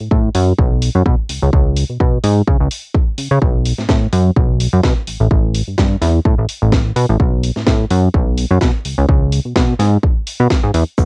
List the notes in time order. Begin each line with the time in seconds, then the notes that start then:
0.00 A2
0.11 A2, kick
0.35 F#2, open hi-hat
0.58 B1, kick
0.82 open hi-hat
0.95 F#2
1.06 B2, kick
1.29 C#2, open hi-hat
1.42 C#2
1.53 kick
1.76 open hi-hat
1.90 B2
2.00 B2, kick
2.24 G#2, open hi-hat
2.47 C#3, kick
2.60 C#2
2.71 open hi-hat
2.95 kick
3.18 C#3, open hi-hat
3.31 C#3
3.42 B1, kick
3.66 open hi-hat
3.78 A2, snare
3.89 A2, kick, snare
4.13 F#2, open hi-hat
4.36 B1, kick
4.60 open hi-hat
4.73 F#2
4.83 B2, kick, snare
5.07 A1, open hi-hat
5.20 A1
5.31 A1, kick
5.54 open hi-hat
5.68 G2
5.78 G2, kick, snare
6.01 E2, snare, open hi-hat
6.25 A2, kick
6.38 A1
6.49 open hi-hat
6.62 A1
6.72 kick, snare
6.96 B2, open hi-hat
7.09 A1
7.20 kick
7.43 open hi-hat
7.56 A2, snare
7.67 A2, kick, snare
7.90 F#2, open hi-hat
8.14 B1, kick
8.38 open hi-hat
8.51 F#2
8.61 B2, kick, snare
8.85 C#2, open hi-hat
8.98 C#2
9.09 C#2, kick
9.32 open hi-hat
9.45 B2
9.56 B2, kick, snare
9.79 G#2, snare, open hi-hat
10.03 kick
10.27 open hi-hat
10.40 B2
10.50 kick, snare
10.64 G#2
10.74 E2, open hi-hat
10.98 B1, kick, closed hi-hat, cabasa